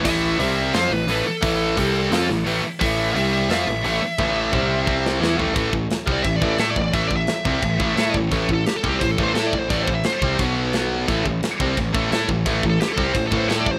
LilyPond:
<<
  \new Staff \with { instrumentName = "Lead electric guitar" } { \time 4/4 \key a \minor \tempo 4 = 174 e''4 e''4 c''8 b'4 a'8~ | a'2~ a'8 r4. | e''4 e''8 e''2~ e''8~ | e''2. r4 |
r4 \tuplet 3/2 { r4 d''8 e''8 d''8 d''8 e''8 d''8 d''8 } | \tuplet 3/2 { e''8 d''8 e''8~ } e''2~ e''8 r8 | \tuplet 3/2 { r4 a'8 g'8 a'8 g'8 c''8 a'8 c''8 a'8 d''8 c''8 } | \tuplet 3/2 { d''8 c''8 e''8 } c''4 r2 |
r1 | \tuplet 3/2 { r4 a'8 g'8 a'8 g'8 c''8 a'8 c''8 a'8 d''8 c''8 } | }
  \new Staff \with { instrumentName = "Distorted electric guitar" } { \clef bass \time 4/4 \key a \minor <a, e a>4 <c g c'>4 <f c' f'>8 <a, e>8 <a, e a>8 r8 | <a, e a>4 <c g c'>4 <f c' f'>8 <a, e>8 <a, e a>8 r8 | <a, e a>4 <c g c'>4 <f c' f'>8 <a, e>8 <a, e a>8 r8 | <a, e a>4 <c g c'>4 <c g c'>4 <e b e'>8 <a, e a>8 |
<a, e a>8 <a, e>8 r8 <c g c'>8 <a, e>8 <a, e a>8 <a e' a'>8 <a, e>8 | <a, e a>8 <a, e>8 r8 <c g c'>8 <a, e>8 <a, e a>8 <a e' a'>8 <a, e>8 | <a, e a>8 <a, e>8 r8 <c g c'>8 <a, e>8 <a, e a>8 <a e' a'>8 <a, e>8 | <a, e a>8 <a, e>8 r8 <c g c'>8 <b, fis b>2 |
<a, e a>8 <a, e>8 r8 <c g c'>8 <a, e>8 <a, e a>8 <a e' a'>8 <a, e>8 | <a, e a>8 <a, e>8 r8 <c g c'>8 <a, e>8 <a, e a>8 <a e' a'>8 <a, e>8 | }
  \new Staff \with { instrumentName = "Distorted electric guitar" } { \clef bass \time 4/4 \key a \minor <a, e a>4 <c g c'>4 <f c' f'>8 <a, e>8 <a, e a>8 r8 | <a, e a>4 <c g c'>4 <f c' f'>8 <a, e>8 <a, e a>8 r8 | <a, e a>4 <c g c'>4 <f c' f'>8 <a, e>8 <a, e a>8 r8 | <a, e a>4 <c g c'>4 <c g c'>4 <e b e'>8 <a, e a>8 |
<a, e a>8 <a, e>8 r8 <c g c'>8 <a, e>8 <a, e a>8 <a e' a'>8 <a, e>8 | <a, e a>8 <a, e>8 r8 <c g c'>8 <a, e>8 <a, e a>8 <a e' a'>8 <a, e>8 | <a, e a>8 <a, e>8 r8 <c g c'>8 <a, e>8 <a, e a>8 <a e' a'>8 <a, e>8 | <a, e a>8 <a, e>8 r8 <c g c'>8 <b, fis b>2 |
<a, e a>8 <a, e>8 r8 <c g c'>8 <a, e>8 <a, e a>8 <a e' a'>8 <a, e>8 | <a, e a>8 <a, e>8 r8 <c g c'>8 <a, e>8 <a, e a>8 <a e' a'>8 <a, e>8 | }
  \new Staff \with { instrumentName = "Overdriven electric guitar" } { \clef bass \time 4/4 \key a \minor <a, e a>4 <c g c'>4 <f c' f'>8 <a, e>8 <a, e a>8 r8 | <a, e a>4 <c g c'>4 <f c' f'>8 <a, e>8 <a, e a>8 r8 | <a, e a>4 <c g c'>4 <f c' f'>8 <a, e>8 <a, e a>8 r8 | <a, e a>4 <c g c'>4 <c g c'>4 <e b e'>8 <a, e a>8 |
<a, e a>8 <a, e>8 r8 <c g c'>8 <a, e>8 <a, e a>8 <a e' a'>8 <a, e>8 | <a, e a>8 <a, e>8 r8 <c g c'>8 <a, e>8 <a, e a>8 <a e' a'>8 <a, e>8 | <a, e a>8 <a, e>8 r8 <c g c'>8 <a, e>8 <a, e a>8 <a e' a'>8 <a, e>8 | <a, e a>8 <a, e>8 r8 <c g c'>8 <b, fis b>2 |
<a, e a>8 <a, e>8 r8 <c g c'>8 <a, e>8 <a, e a>8 <a e' a'>8 <a, e>8 | <a, e a>8 <a, e>8 r8 <c g c'>8 <a, e>8 <a, e a>8 <a e' a'>8 <a, e>8 | }
  \new Staff \with { instrumentName = "Picked electric bass" } { \clef bass \time 4/4 \key a \minor a,,4 c,4 f,8 a,,8 a,,8 r8 | a,,4 c,4 f,8 a,,8 a,,8 r8 | a,,4 c,4 f,8 a,,8 a,,8 r8 | a,,4 c,4 c,4 e,8 a,,8 |
a,,8 a,,8 r8 c,8 a,,8 a,,8 a,8 a,,8 | a,,8 a,,8 r8 c,8 a,,8 a,,8 a,8 a,,8 | a,,8 a,,8 r8 c,8 a,,8 a,,8 a,8 a,,8 | a,,8 a,,8 r8 c,8 b,,2 |
a,,8 a,,8 r8 c,8 a,,8 a,,8 a,8 a,,8 | a,,8 a,,8 r8 c,8 a,,8 a,,8 a,8 a,,8 | }
  \new DrumStaff \with { instrumentName = "Drums" } \drummode { \time 4/4 <cymc hho bd>4 hho4 <hho sn>4 hho4 | <hho bd>4 <hho bd>4 <hho sn>8 sn8 hho4 | <hho bd>4 hho4 <hho sn>4 hho4 | <bd tommh>4 <bd toml>4 bd8 sn8 sn8 tomfh8 |
<cymc bd>8 bd8 <cymc sn>8 bd8 <cymc bd>8 bd8 <cymc sn>8 bd8 | <cymc bd>8 bd8 <cymc sn>8 bd8 <cymc bd>8 bd8 <cymc sn>8 bd8 | <cymc bd>8 bd8 <cymc sn>8 bd8 <cymc bd>8 bd8 <cymc sn>8 bd8 | <cymc bd>8 bd8 <cymc sn>8 bd8 <cymc bd>4 <cymc sn>4 |
<cymc bd>8 bd8 <cymc sn>8 bd8 <cymc bd>8 bd8 <cymc sn>8 bd8 | <cymc bd>8 bd8 <cymc sn>8 bd8 <cymc bd>8 bd8 <cymc sn>8 bd8 | }
>>